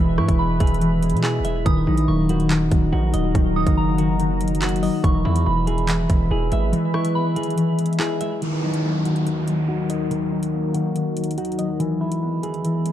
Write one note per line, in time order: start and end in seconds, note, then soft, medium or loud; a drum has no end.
0.00 0.20 E1 loud
0.00 0.59 E3 medium
0.00 1.24 E3 loud
0.00 0.17 G#3 medium
0.00 0.39 B3 medium
0.00 1.22 E4 loud
0.00 0.59 G#4 loud
0.00 1.63 G#4 medium
0.00 1.63 B4 medium
0.00 1.03 E5 medium
0.00 1.63 E5 medium
0.00 1.63 B5 medium
0.18 0.28 G#2 loud
0.18 1.01 G#3 medium
0.18 1.45 E4 medium
0.18 0.38 C#6 medium
0.18 cross-stick medium
0.28 0.59 E1 loud
0.28 kick loud
0.28 closed hi-hat medium
0.39 2.14 B3 medium
0.39 0.79 B5 medium
0.60 1.15 E1 loud
0.60 0.80 E3 loud
0.60 1.22 G#4 medium
0.60 kick loud
0.60 closed hi-hat medium
0.67 closed hi-hat medium
0.74 closed hi-hat soft
0.82 1.71 E3 medium
0.82 closed hi-hat medium
1.02 1.44 G#3 medium
1.02 closed hi-hat medium
1.10 1.41 B2 loud
1.10 closed hi-hat medium
1.17 closed hi-hat soft
1.23 1.72 E4 loud
1.23 1.66 G#4 medium
1.23 clap loud
1.40 1.65 E1 loud
1.45 1.71 G#3 medium
1.45 1.66 E5 medium
1.45 closed hi-hat medium
1.66 1.86 D#1 loud
1.66 2.28 D#3 loud
1.66 2.93 D#3 medium
1.66 5.01 F#4 medium
1.66 5.01 A#4 medium
1.66 5.01 D#5 medium
1.66 5.01 A#5 medium
1.66 2.06 D#6 loud
1.66 kick loud
1.66 closed hi-hat medium
1.87 2.07 A#1 loud
1.87 2.34 F#3 medium
1.87 3.14 D#4 medium
1.98 closed hi-hat medium
2.08 2.69 D#1 loud
2.08 3.77 A#3 medium
2.08 2.48 C#6 medium
2.29 2.49 D#3 loud
2.29 2.91 F#4 medium
2.29 closed hi-hat medium
2.40 closed hi-hat soft
2.50 3.34 D#3 medium
2.50 clap loud
2.50 closed hi-hat medium
2.71 2.92 D#1 loud
2.71 3.13 F#3 medium
2.71 kick loud
2.71 closed hi-hat medium
2.92 3.13 A#1 loud
2.92 4.61 D#4 medium
2.92 3.97 F#4 medium
3.14 3.34 D#1 loud
3.14 3.40 F#3 medium
3.14 4.40 D#5 medium
3.14 closed hi-hat medium
3.35 3.65 D#1 loud
3.35 4.62 D#3 loud
3.35 3.97 D#3 medium
3.35 kick loud
3.35 closed hi-hat medium
3.56 4.03 F#3 medium
3.56 4.83 D#4 medium
3.56 3.76 D#6 medium
3.67 4.89 F#1 loud
3.67 kick loud
3.67 closed hi-hat medium
3.77 5.52 A#3 medium
3.77 4.17 A#5 medium
3.98 4.18 D#3 medium
3.98 4.61 F#4 medium
3.98 closed hi-hat medium
4.19 5.09 D#3 medium
4.19 closed hi-hat medium
4.41 4.82 F#3 medium
4.41 closed hi-hat medium
4.48 closed hi-hat medium
4.55 closed hi-hat medium
4.62 5.10 D#4 loud
4.62 5.04 F#4 medium
4.62 clap loud
4.62 closed hi-hat medium
4.69 closed hi-hat medium
4.76 closed hi-hat soft
4.83 5.09 F#3 medium
4.83 5.04 D#5 medium
4.83 open hi-hat medium
5.04 5.24 E1 loud
5.04 6.31 E3 medium
5.04 5.66 E3 medium
5.04 8.39 G#4 medium
5.04 8.39 B4 medium
5.04 8.39 E5 medium
5.04 8.39 B5 medium
5.04 5.43 C#6 loud
5.04 kick loud
5.04 closed hi-hat medium
5.25 5.45 E2 loud
5.25 6.08 G#3 medium
5.25 6.52 E4 medium
5.36 closed hi-hat medium
5.46 6.07 E1 loud
5.46 7.15 B3 medium
5.46 5.86 B5 medium
5.67 5.87 E3 medium
5.67 6.30 G#4 medium
5.67 closed hi-hat medium
5.78 closed hi-hat soft
5.89 6.72 E3 medium
5.89 clap loud
5.89 closed hi-hat medium
6.09 6.30 E1 loud
6.09 6.50 G#3 medium
6.09 kick loud
6.09 closed hi-hat medium
6.31 6.51 E1 loud
6.31 7.98 E4 loud
6.31 7.35 G#4 medium
6.51 6.73 G#1 loud
6.51 6.93 G#3 medium
6.51 7.79 E5 medium
6.51 closed hi-hat medium
6.73 8.00 E3 loud
6.73 7.35 E3 medium
6.73 closed hi-hat medium
6.94 7.77 G#3 medium
6.94 8.21 E4 medium
6.94 7.14 C#6 medium
6.94 cross-stick medium
7.05 closed hi-hat medium
7.15 8.90 B3 medium
7.15 7.55 B5 medium
7.36 7.56 E3 medium
7.36 7.98 G#4 medium
7.36 closed hi-hat medium
7.43 closed hi-hat medium
7.50 closed hi-hat soft
7.58 8.47 E3 medium
7.58 closed hi-hat medium
7.79 8.20 G#3 medium
7.79 closed hi-hat medium
7.86 closed hi-hat medium
7.93 closed hi-hat soft
7.99 8.48 E4 loud
7.99 8.42 G#4 medium
7.99 clap loud
8.21 8.47 G#3 medium
8.21 8.42 E5 medium
8.21 closed hi-hat medium
8.42 11.77 D#2 medium
8.42 9.04 D#3 medium
8.42 11.77 D#3 medium
8.42 9.69 D#3 medium
8.42 11.77 F#4 medium
8.42 11.77 A#4 medium
8.42 closed hi-hat medium
8.42 downlifter medium
8.63 9.10 F#3 medium
8.63 9.90 D#4 medium
8.74 closed hi-hat medium
8.84 10.53 A#3 medium
9.05 9.25 D#3 medium
9.05 9.67 F#4 medium
9.05 closed hi-hat medium
9.16 closed hi-hat soft
9.27 10.10 D#3 medium
9.27 closed hi-hat medium
9.48 9.89 F#3 medium
9.48 closed hi-hat medium
9.69 11.37 D#4 medium
9.69 10.73 F#4 medium
9.90 10.16 F#3 medium
9.90 11.17 D#5 medium
9.90 closed hi-hat medium
10.11 11.38 D#3 medium
10.11 10.73 D#3 medium
10.11 closed hi-hat medium
10.32 10.79 F#3 medium
10.32 11.59 D#4 medium
10.43 closed hi-hat medium
10.53 12.28 A#3 medium
10.74 10.94 D#3 medium
10.74 11.37 F#4 medium
10.74 closed hi-hat medium
10.95 11.85 D#3 medium
10.95 closed hi-hat medium
11.17 11.58 F#3 medium
11.17 closed hi-hat medium
11.24 closed hi-hat medium
11.31 closed hi-hat medium
11.38 11.86 D#4 medium
11.38 11.80 F#4 medium
11.38 closed hi-hat medium
11.45 closed hi-hat medium
11.52 closed hi-hat soft
11.59 11.85 F#3 medium
11.59 11.80 D#5 medium
11.59 closed hi-hat medium
11.80 12.92 E2 medium
11.80 12.92 E3 medium
11.80 12.42 E3 medium
11.80 12.92 E3 medium
11.80 12.92 G#4 medium
11.80 12.92 B4 medium
11.80 closed hi-hat medium
12.01 12.84 G#3 medium
12.01 12.92 E4 medium
12.12 closed hi-hat medium
12.22 12.92 B3 medium
12.43 12.63 E3 medium
12.43 12.92 G#4 medium
12.43 closed hi-hat medium
12.54 closed hi-hat soft
12.65 12.92 E3 medium
12.65 closed hi-hat medium
12.85 12.92 G#3 medium
12.85 closed hi-hat medium